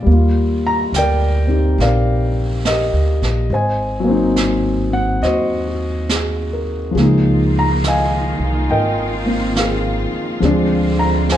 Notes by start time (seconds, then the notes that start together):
0.03 D#2 G3
0.07 A#3, brush sweep
0.13 F4
0.67 A#5
0.92 D2 G5, snare, hi-hat pedal
0.98 A#4 D5
1.47 C4 D#4 G4
1.78 A#1 D5 F5, brush sweep, snare
1.82 A#4
2.65 G4 A#4 D#5, snare, hi-hat pedal
2.93 D2
3.22 A#1, snare
3.50 G#1 C5 D#5, brush sweep
3.54 G#5
4.00 F#3
4.04 A#3 C4
4.11 D#4
4.36 snare, hi-hat pedal
4.91 C4 F#5
5.22 D#2 F#4 C5 D#5, brush sweep, snare
5.67 F#4
6.09 G#4, snare, hi-hat pedal
6.53 A#4
6.91 C#2 F3 G#3 A#3 F4
6.96 D#3 A#3 D#4, brush sweep, snare
7.01 D#4
7.59 A#5
7.84 D#5 F5, snare, hi-hat pedal
7.88 G#5
8.39 C2
8.70 G#1 A#4 D#5 G5, brush sweep
9.26 A#3 C4 F4
9.56 G#4 A#4 F5, snare, hi-hat pedal
10.13 muted upright bass stroke
10.40 D2 D3 F3 G#3 C4, brush sweep, snare
10.45 D4
10.99 A#5
11.29 C5 F5 G#5, snare, hi-hat pedal